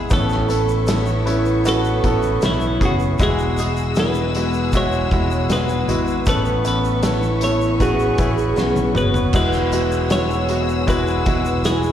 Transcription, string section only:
0, 0, Header, 1, 2, 480
1, 0, Start_track
1, 0, Key_signature, 3, "major"
1, 0, Tempo, 769231
1, 71, Time_signature, 4, 2, 24, 8
1, 7438, End_track
2, 0, Start_track
2, 0, Title_t, "String section"
2, 0, Program_c, 0, 48
2, 64, Note_on_c, 0, 85, 78
2, 66, Note_on_c, 0, 76, 62
2, 67, Note_on_c, 0, 71, 71
2, 1968, Note_off_c, 0, 85, 0
2, 1969, Note_off_c, 0, 76, 0
2, 1970, Note_off_c, 0, 71, 0
2, 1992, Note_on_c, 0, 88, 84
2, 1993, Note_on_c, 0, 78, 71
2, 1997, Note_on_c, 0, 68, 77
2, 3892, Note_off_c, 0, 88, 0
2, 3893, Note_off_c, 0, 78, 0
2, 3895, Note_off_c, 0, 68, 0
2, 3910, Note_on_c, 0, 76, 68
2, 3912, Note_on_c, 0, 85, 80
2, 3917, Note_on_c, 0, 71, 72
2, 5812, Note_off_c, 0, 76, 0
2, 5813, Note_off_c, 0, 85, 0
2, 5815, Note_off_c, 0, 71, 0
2, 5829, Note_on_c, 0, 78, 66
2, 5830, Note_on_c, 0, 68, 75
2, 5830, Note_on_c, 0, 88, 84
2, 7438, Note_off_c, 0, 68, 0
2, 7438, Note_off_c, 0, 78, 0
2, 7438, Note_off_c, 0, 88, 0
2, 7438, End_track
0, 0, End_of_file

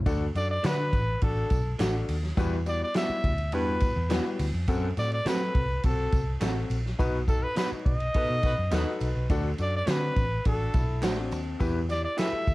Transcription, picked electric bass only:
0, 0, Header, 1, 3, 480
1, 0, Start_track
1, 0, Tempo, 576923
1, 52, Time_signature, 4, 2, 24, 8
1, 10437, End_track
2, 0, Start_track
2, 0, Title_t, "Picked electric bass"
2, 0, Program_c, 0, 34
2, 50, Note_on_c, 0, 38, 100
2, 237, Note_off_c, 0, 38, 0
2, 292, Note_on_c, 0, 42, 94
2, 479, Note_off_c, 0, 42, 0
2, 537, Note_on_c, 0, 50, 102
2, 773, Note_on_c, 0, 33, 92
2, 786, Note_off_c, 0, 50, 0
2, 960, Note_off_c, 0, 33, 0
2, 1019, Note_on_c, 0, 33, 98
2, 1204, Note_off_c, 0, 33, 0
2, 1255, Note_on_c, 0, 35, 88
2, 1442, Note_off_c, 0, 35, 0
2, 1498, Note_on_c, 0, 33, 99
2, 1683, Note_off_c, 0, 33, 0
2, 1737, Note_on_c, 0, 39, 85
2, 1923, Note_off_c, 0, 39, 0
2, 1975, Note_on_c, 0, 40, 99
2, 2348, Note_off_c, 0, 40, 0
2, 2695, Note_on_c, 0, 38, 90
2, 2935, Note_off_c, 0, 38, 0
2, 2935, Note_on_c, 0, 40, 98
2, 3215, Note_off_c, 0, 40, 0
2, 3296, Note_on_c, 0, 40, 87
2, 3483, Note_off_c, 0, 40, 0
2, 3658, Note_on_c, 0, 38, 97
2, 3751, Note_off_c, 0, 38, 0
2, 3776, Note_on_c, 0, 41, 93
2, 3870, Note_off_c, 0, 41, 0
2, 3897, Note_on_c, 0, 42, 108
2, 4083, Note_off_c, 0, 42, 0
2, 4136, Note_on_c, 0, 45, 94
2, 4323, Note_off_c, 0, 45, 0
2, 4375, Note_on_c, 0, 54, 101
2, 4562, Note_off_c, 0, 54, 0
2, 4618, Note_on_c, 0, 36, 87
2, 4804, Note_off_c, 0, 36, 0
2, 4860, Note_on_c, 0, 35, 90
2, 5045, Note_off_c, 0, 35, 0
2, 5099, Note_on_c, 0, 36, 91
2, 5285, Note_off_c, 0, 36, 0
2, 5334, Note_on_c, 0, 33, 96
2, 5521, Note_off_c, 0, 33, 0
2, 5574, Note_on_c, 0, 34, 93
2, 5761, Note_off_c, 0, 34, 0
2, 5818, Note_on_c, 0, 35, 108
2, 6190, Note_off_c, 0, 35, 0
2, 6538, Note_on_c, 0, 35, 93
2, 6724, Note_off_c, 0, 35, 0
2, 6902, Note_on_c, 0, 47, 90
2, 6993, Note_off_c, 0, 47, 0
2, 7018, Note_on_c, 0, 47, 84
2, 7111, Note_off_c, 0, 47, 0
2, 7139, Note_on_c, 0, 42, 94
2, 7231, Note_off_c, 0, 42, 0
2, 7258, Note_on_c, 0, 39, 93
2, 7350, Note_off_c, 0, 39, 0
2, 7496, Note_on_c, 0, 35, 89
2, 7589, Note_off_c, 0, 35, 0
2, 7619, Note_on_c, 0, 35, 91
2, 7711, Note_off_c, 0, 35, 0
2, 7736, Note_on_c, 0, 38, 100
2, 7922, Note_off_c, 0, 38, 0
2, 7978, Note_on_c, 0, 42, 98
2, 8164, Note_off_c, 0, 42, 0
2, 8216, Note_on_c, 0, 50, 108
2, 8402, Note_off_c, 0, 50, 0
2, 8458, Note_on_c, 0, 33, 87
2, 8643, Note_off_c, 0, 33, 0
2, 8701, Note_on_c, 0, 33, 93
2, 8885, Note_off_c, 0, 33, 0
2, 8939, Note_on_c, 0, 35, 96
2, 9180, Note_off_c, 0, 35, 0
2, 9180, Note_on_c, 0, 33, 83
2, 9419, Note_off_c, 0, 33, 0
2, 9419, Note_on_c, 0, 39, 93
2, 9603, Note_off_c, 0, 39, 0
2, 9656, Note_on_c, 0, 40, 103
2, 10028, Note_off_c, 0, 40, 0
2, 10380, Note_on_c, 0, 38, 84
2, 10437, Note_off_c, 0, 38, 0
2, 10437, End_track
3, 0, Start_track
3, 0, Title_t, "Muted picked electric bass strokes"
3, 2574, Note_on_c, 9, 29, 46
3, 2658, Note_off_c, 9, 29, 0
3, 6423, Note_on_c, 9, 29, 47
3, 6506, Note_off_c, 9, 29, 0
3, 10255, Note_on_c, 9, 29, 46
3, 10338, Note_off_c, 9, 29, 0
3, 10437, End_track
0, 0, End_of_file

